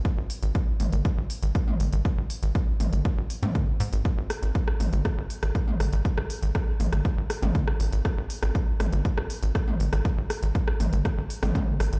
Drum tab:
HH |x-oxx-oxx-oxx-ox|x-oxx-oxx-oxx-ox|x-oxx-oxx-oxx-ox|x-oxx-oxx-oxx-ox|
SD |----------------|----------------|--r--r--r--r--r-|-r--r--r--r--r--|
T2 |------o------o--|------o----o----|------o------o--|------o----o----|
BD |o---o---o---o---|o---o---o---o---|o---o---o---o---|o---o---o---o---|

HH |x-oxx-oxx-oxx-ox|x-oxx-oxx-oox-ox|
SD |r--r--r--r--r--r|--r--r--r--r--r-|
T2 |------o------o--|------o----oo---|
BD |o---o---o---o---|o---o---o---o---|